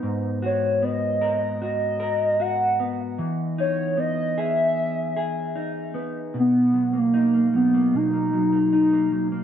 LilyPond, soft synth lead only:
\new Staff \with { instrumentName = "Soft synth lead" } { \time 4/4 \key b \major \tempo 4 = 76 r8 cis''8 dis''4 dis''4 fis''8. r16 | r8 cis''8 dis''8 e''4. r4 | b8. ais8. b8 dis'4 dis'8. r16 | }